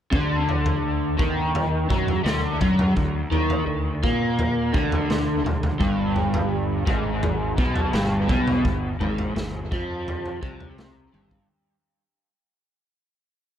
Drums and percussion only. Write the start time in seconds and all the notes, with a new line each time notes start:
0.13 kick, floor tom
0.49 floor tom
0.66 floor tom
1.19 kick
1.55 floor tom
1.90 kick, mid tom
2.08 floor tom
2.26 snare, mid tom
2.61 kick, floor tom, mid tom
2.79 floor tom, mid tom
2.96 kick, floor tom
3.32 floor tom
3.50 floor tom
4.04 kick
4.39 floor tom
4.74 kick, mid tom
4.92 floor tom
5.10 snare, mid tom
5.46 floor tom, mid tom
5.63 floor tom, mid tom
5.81 kick, floor tom
6.16 floor tom
6.34 floor tom
6.87 kick
7.23 floor tom
7.58 kick, mid tom
7.76 floor tom
7.93 snare, mid tom
8.29 kick, floor tom, mid tom
8.47 floor tom, mid tom
8.65 kick, floor tom
9.01 floor tom
9.18 floor tom
9.36 snare, floor tom
9.72 kick
10.08 floor tom
10.26 floor tom
10.43 kick
10.60 floor tom
10.78 snare, mid tom
11.14 high tom
11.31 kick